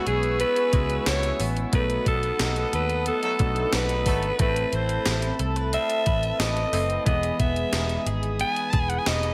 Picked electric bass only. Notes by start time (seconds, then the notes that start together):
0.07 B1
0.73 C#2
1.07 C#2
1.40 A1
1.73 B1
2.06 B1
2.40 B1
2.73 D#2
3.40 B1
3.73 B1
4.06 G#1
4.40 A1
4.73 A1
5.06 A1
5.39 C2
6.07 A1
6.40 A1
6.73 F#1
7.06 E1
7.39 E1
7.73 E1
8.06 G#1
8.73 E1
9.07 E1